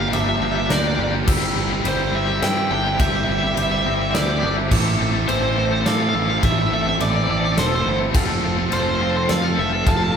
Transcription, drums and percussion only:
0.13 ride medium
0.70 snare medium
0.70 ride medium
1.28 kick loud
1.28 crash loud
1.85 ride medium
2.42 snare medium
2.42 ride medium
3.00 kick loud
3.00 ride medium
3.57 ride medium
4.15 snare medium
4.15 ride medium
4.71 kick loud
4.71 crash loud
5.29 ride medium
5.86 snare medium
5.86 ride medium
6.43 kick loud
6.43 ride medium
7.00 ride medium
7.58 snare medium
7.58 ride medium
8.14 kick loud
8.14 crash loud
8.72 ride medium
9.29 snare medium
9.29 ride medium
9.87 kick loud
9.87 ride medium

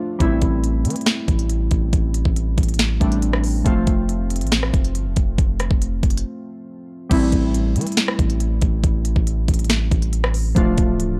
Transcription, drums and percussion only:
0.20 kick loud
0.20 closed hi-hat medium
0.42 kick medium
0.42 closed hi-hat medium
0.64 closed hi-hat medium
0.85 closed hi-hat medium
0.90 closed hi-hat medium
0.96 closed hi-hat medium
1.01 closed hi-hat medium
1.06 snare loud
1.06 closed hi-hat medium
1.28 kick loud
1.28 closed hi-hat medium
1.39 closed hi-hat medium
1.50 closed hi-hat medium
1.71 kick medium
1.71 closed hi-hat medium
1.93 kick loud
1.93 closed hi-hat medium
2.14 closed hi-hat medium
2.25 kick loud
2.36 closed hi-hat medium
2.58 kick loud
2.58 closed hi-hat medium
2.63 closed hi-hat medium
2.69 closed hi-hat medium
2.74 closed hi-hat medium
2.79 snare loud
2.79 closed hi-hat medium
3.01 kick loud
3.01 closed hi-hat medium
3.12 closed hi-hat medium
3.22 closed hi-hat medium
3.33 cross-stick medium
3.44 open hi-hat medium
3.66 kick loud
3.66 closed hi-hat medium
3.87 kick loud
3.87 closed hi-hat medium
4.09 closed hi-hat medium
4.30 closed hi-hat medium
4.36 closed hi-hat medium
4.41 closed hi-hat medium
4.47 closed hi-hat medium
4.52 snare loud
4.52 closed hi-hat medium
4.63 cross-stick medium
4.74 kick loud
4.74 closed hi-hat medium
4.84 closed hi-hat medium
4.95 closed hi-hat medium
5.16 kick loud
5.16 closed hi-hat medium
5.38 kick loud
5.38 closed hi-hat medium
5.60 cross-stick medium
5.60 closed hi-hat medium
5.71 kick loud
5.82 closed hi-hat medium
6.03 kick loud
6.03 closed hi-hat medium
6.10 closed hi-hat medium
6.17 closed hi-hat medium
7.11 kick loud
7.11 closed hi-hat medium
7.11 crash loud
7.32 kick medium
7.32 closed hi-hat medium
7.54 closed hi-hat medium
7.76 closed hi-hat medium
7.81 closed hi-hat medium
7.87 closed hi-hat medium
7.92 closed hi-hat medium
7.97 snare loud
7.97 closed hi-hat medium
8.08 cross-stick loud
8.19 kick loud
8.19 closed hi-hat medium
8.30 closed hi-hat medium
8.40 closed hi-hat medium
8.62 kick loud
8.62 closed hi-hat medium
8.84 kick loud
8.84 closed hi-hat medium
9.05 closed hi-hat medium
9.16 kick loud
9.27 closed hi-hat medium
9.48 kick loud
9.48 closed hi-hat medium
9.54 closed hi-hat medium
9.59 closed hi-hat medium
9.65 closed hi-hat medium
9.70 snare loud
9.70 closed hi-hat medium
9.92 kick loud
9.92 closed hi-hat medium
10.02 closed hi-hat medium
10.13 closed hi-hat medium
10.24 cross-stick loud
10.34 open hi-hat medium
10.56 kick loud
10.56 closed hi-hat medium
10.78 kick loud
10.78 closed hi-hat medium
11.00 closed hi-hat medium

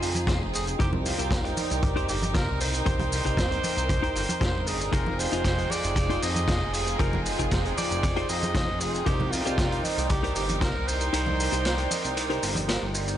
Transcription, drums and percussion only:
0.02 open hi-hat loud
0.02 shaker medium
0.15 closed hi-hat medium
0.15 high conga medium
0.15 shaker medium
0.27 kick loud
0.27 snare loud
0.27 closed hi-hat medium
0.27 shaker medium
0.53 open hi-hat loud
0.53 shaker medium
0.67 closed hi-hat medium
0.67 shaker medium
0.80 kick loud
0.80 closed hi-hat medium
0.80 shaker soft
0.93 high conga medium
0.93 low conga medium
1.06 open hi-hat loud
1.06 shaker medium
1.19 closed hi-hat medium
1.19 shaker medium
1.31 kick loud
1.31 snare loud
1.31 closed hi-hat medium
1.31 shaker soft
1.45 closed hi-hat medium
1.57 open hi-hat loud
1.57 high conga medium
1.57 shaker medium
1.70 closed hi-hat medium
1.70 shaker medium
1.83 kick loud
1.83 closed hi-hat medium
1.83 shaker medium
1.96 closed hi-hat medium
2.09 open hi-hat loud
2.09 shaker medium
2.22 closed hi-hat medium
2.22 high conga loud
2.22 shaker medium
2.35 kick loud
2.35 snare loud
2.35 closed hi-hat medium
2.35 shaker medium
2.60 open hi-hat loud
2.60 shaker medium
2.74 closed hi-hat soft
2.74 shaker medium
2.86 kick loud
2.86 closed hi-hat medium
2.86 shaker medium
2.99 closed hi-hat medium
2.99 high conga loud
2.99 low conga medium
3.12 open hi-hat loud
3.12 shaker loud
3.25 kick medium
3.25 closed hi-hat medium
3.25 shaker medium
3.37 kick loud
3.37 snare loud
3.37 closed hi-hat medium
3.37 shaker medium
3.52 closed hi-hat medium
3.64 open hi-hat loud
3.64 high conga medium
3.64 shaker medium
3.77 closed hi-hat medium
3.77 shaker medium
3.89 kick loud
3.89 closed hi-hat medium
3.89 shaker soft
4.03 closed hi-hat medium
4.15 open hi-hat loud
4.15 shaker medium
4.29 closed hi-hat medium
4.29 high conga loud
4.29 shaker medium
4.41 kick loud
4.41 snare loud
4.41 closed hi-hat medium
4.41 shaker soft
4.67 open hi-hat loud
4.67 shaker medium
4.81 closed hi-hat medium
4.81 shaker medium
4.92 kick loud
4.92 closed hi-hat medium
4.92 ride medium
4.92 shaker soft
5.06 high conga medium
5.06 low conga medium
5.19 open hi-hat loud
5.19 shaker medium
5.33 closed hi-hat medium
5.33 shaker medium
5.44 kick loud
5.44 snare loud
5.44 closed hi-hat medium
5.44 ride medium
5.44 shaker soft
5.58 closed hi-hat medium
5.70 open hi-hat loud
5.70 high conga medium
5.70 shaker medium
5.84 closed hi-hat medium
5.84 shaker medium
5.96 kick loud
5.96 closed hi-hat medium
5.96 ride medium
5.96 shaker medium
6.10 closed hi-hat medium
6.22 open hi-hat loud
6.22 shaker medium
6.36 closed hi-hat medium
6.36 high conga medium
6.36 shaker medium
6.48 kick loud
6.48 snare loud
6.48 closed hi-hat medium
6.48 ride medium
6.48 shaker soft
6.73 open hi-hat loud
6.73 shaker medium
6.87 closed hi-hat medium
6.87 shaker medium
6.99 kick loud
6.99 closed hi-hat medium
6.99 ride medium
6.99 shaker soft
7.13 high conga loud
7.13 low conga medium
7.26 open hi-hat loud
7.26 shaker loud
7.39 kick medium
7.39 closed hi-hat medium
7.39 shaker medium
7.51 kick loud
7.51 snare loud
7.51 closed hi-hat medium
7.51 ride medium
7.51 shaker medium
7.65 closed hi-hat medium
7.78 open hi-hat loud
7.78 high conga medium
7.78 shaker medium
7.91 closed hi-hat medium
7.91 shaker medium
8.03 kick loud
8.03 closed hi-hat medium
8.03 ride medium
8.03 shaker soft
8.16 closed hi-hat medium
8.29 open hi-hat loud
8.29 shaker medium
8.42 closed hi-hat medium
8.42 high conga loud
8.42 shaker medium
8.55 kick loud
8.55 snare loud
8.55 closed hi-hat loud
8.55 ride medium
8.55 shaker medium
8.81 open hi-hat loud
8.81 shaker medium
8.94 closed hi-hat medium
8.94 shaker medium
9.06 kick loud
9.06 closed hi-hat medium
9.06 ride medium
9.06 shaker soft
9.20 high conga medium
9.20 low conga loud
9.33 open hi-hat loud
9.33 shaker loud
9.46 closed hi-hat medium
9.46 shaker medium
9.58 kick loud
9.58 snare loud
9.58 closed hi-hat medium
9.58 ride medium
9.58 shaker medium
9.72 closed hi-hat medium
9.84 open hi-hat loud
9.84 high conga medium
9.84 shaker medium
9.98 closed hi-hat medium
9.98 shaker medium
10.10 kick loud
10.10 closed hi-hat medium
10.10 ride medium
10.10 shaker medium
10.24 closed hi-hat medium
10.36 open hi-hat loud
10.36 shaker medium
10.49 closed hi-hat medium
10.49 high conga loud
10.49 shaker medium
10.61 kick loud
10.61 snare loud
10.61 closed hi-hat medium
10.61 ride medium
10.61 shaker medium
10.88 open hi-hat medium
10.88 shaker medium
11.01 closed hi-hat medium
11.01 shaker medium
11.13 closed hi-hat loud
11.13 ride medium
11.13 shaker soft
11.26 high conga medium
11.26 low conga medium
11.40 open hi-hat loud
11.40 shaker medium
11.53 closed hi-hat medium
11.53 shaker medium
11.65 snare loud
11.65 closed hi-hat medium
11.65 ride medium
11.65 shaker soft
11.78 closed hi-hat medium
11.91 open hi-hat loud
11.91 high conga medium
11.91 shaker loud
12.04 closed hi-hat medium
12.04 shaker medium
12.17 closed hi-hat loud
12.17 ride medium
12.17 shaker soft
12.30 closed hi-hat soft
12.43 open hi-hat loud
12.43 shaker medium
12.55 closed hi-hat medium
12.55 high conga loud
12.55 shaker medium
12.69 snare loud
12.69 closed hi-hat medium
12.69 ride medium
12.69 shaker soft
12.95 open hi-hat medium
12.95 shaker loud
13.08 closed hi-hat medium
13.08 shaker medium

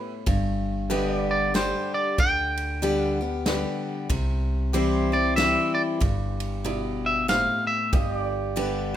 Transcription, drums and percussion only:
0.27 kick loud
0.27 ride medium
0.91 ride soft
1.55 snare medium
1.55 ride medium
2.18 kick loud
2.18 ride medium
2.57 ride medium
2.83 ride medium
3.46 snare medium
3.46 ride medium
4.10 kick loud
4.10 ride medium
4.74 ride medium
5.38 snare medium
5.38 ride medium
6.01 kick medium
6.01 ride medium
6.40 ride medium
6.65 ride medium
7.29 snare medium
7.29 ride medium
7.93 kick loud
7.93 ride medium
8.57 ride medium

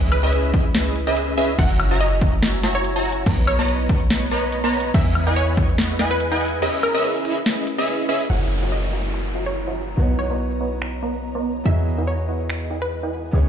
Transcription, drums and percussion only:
0.12 closed hi-hat medium
0.12 high woodblock medium
0.33 closed hi-hat medium
0.54 kick loud
0.54 closed hi-hat medium
0.75 snare loud
0.75 closed hi-hat medium
0.96 closed hi-hat medium
1.17 closed hi-hat medium
1.38 closed hi-hat soft
1.42 closed hi-hat medium
1.45 closed hi-hat medium
1.59 kick loud
1.59 closed hi-hat medium
1.59 crash soft
1.80 closed hi-hat medium
1.80 high woodblock medium
2.01 closed hi-hat medium
2.22 kick loud
2.22 closed hi-hat medium
2.43 snare loud
2.43 closed hi-hat medium
2.63 snare medium
2.63 closed hi-hat medium
2.85 closed hi-hat medium
3.05 closed hi-hat soft
3.09 closed hi-hat medium
3.12 closed hi-hat medium
3.26 kick loud
3.26 closed hi-hat medium
3.26 crash soft
3.47 closed hi-hat medium
3.47 high woodblock medium
3.68 closed hi-hat medium
3.89 kick loud
3.89 closed hi-hat medium
4.10 snare loud
4.10 closed hi-hat medium
4.31 closed hi-hat medium
4.52 closed hi-hat medium
4.73 closed hi-hat soft
4.77 closed hi-hat medium
4.80 closed hi-hat medium
4.94 kick loud
4.94 closed hi-hat medium
4.94 crash soft
5.15 closed hi-hat medium
5.15 high woodblock medium
5.36 closed hi-hat medium
5.57 kick loud
5.57 closed hi-hat medium
5.78 snare loud
5.78 closed hi-hat medium
5.99 snare medium
5.99 closed hi-hat medium
6.20 closed hi-hat medium
6.41 closed hi-hat medium
6.45 closed hi-hat medium
6.48 closed hi-hat medium
6.62 closed hi-hat medium
6.62 crash soft
6.83 closed hi-hat medium
6.83 high woodblock medium
7.04 closed hi-hat medium
7.25 closed hi-hat medium
7.46 snare loud
7.46 closed hi-hat medium
7.67 closed hi-hat medium
7.88 closed hi-hat medium
8.09 closed hi-hat medium
8.15 closed hi-hat medium
8.20 closed hi-hat medium
8.25 closed hi-hat medium
9.14 finger snap medium
10.82 finger snap medium
12.50 finger snap medium

